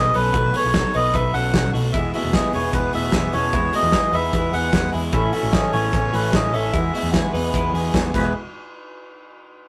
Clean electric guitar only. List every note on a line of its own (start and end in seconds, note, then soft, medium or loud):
0.00 0.14 B3 medium
0.00 0.14 G#4 medium
0.14 0.34 C#4 medium
0.14 0.33 A4 medium
0.34 0.54 A3 medium
0.34 0.53 F#4 loud
0.54 0.74 B3 medium
0.54 0.73 G#4 medium
0.74 0.93 D#4 medium
0.74 0.93 A4 medium
0.94 1.14 D#4 medium
0.94 1.13 B4 medium
1.14 1.34 D#4 medium
1.14 1.33 B4 medium
1.33 1.72 C#4 medium
1.33 1.71 A4 medium
1.74 1.94 A3 medium
1.74 1.94 F#4 medium
1.94 2.14 G#3 medium
1.94 2.14 E4 loud
2.15 2.34 A3 medium
2.15 2.33 F#4 medium
2.34 2.54 B3 medium
2.34 2.53 G#4 medium
2.54 2.92 B3 medium
2.54 2.92 G#4 medium
2.94 3.14 A3 medium
2.94 3.14 F#4 medium
3.14 3.34 B3 medium
3.14 3.34 G#4 medium
3.34 3.53 C#4 medium
3.34 3.54 A4 medium
3.54 3.74 G#3 medium
3.54 3.74 E4 loud
3.73 3.94 A3 medium
3.73 3.93 F#4 medium
3.94 4.14 B3 medium
3.94 4.13 G#4 medium
4.14 4.34 D#4 medium
4.14 4.32 B4 medium
4.33 4.54 E4 medium
4.33 4.53 B4 medium
4.53 4.91 B3 medium
4.53 4.91 G#4 medium
4.93 5.13 G#3 medium
4.93 5.12 E4 medium
5.13 5.32 A3 medium
5.13 5.32 E4 loud
5.33 5.54 A3 medium
5.33 5.52 F#4 medium
5.53 5.73 C#4 medium
5.53 5.72 G#4 medium
5.73 6.11 B3 medium
5.73 6.11 G#4 medium
6.13 6.34 A3 medium
6.13 6.32 F#4 medium
6.32 6.53 C#4 medium
6.32 6.53 G#4 medium
6.53 6.73 C#4 medium
6.53 6.74 A4 medium
6.73 6.94 G#3 medium
6.73 6.94 E4 medium
6.93 7.14 A3 medium
6.93 7.13 F#4 medium
7.13 7.34 B3 medium
7.13 7.33 G#4 medium
7.34 7.54 D#4 medium
7.34 7.53 B4 medium
7.54 7.74 E4 medium
7.54 7.74 B4 medium
7.74 8.12 B3 medium
7.74 8.12 G#4 medium
8.14 8.33 G#3 medium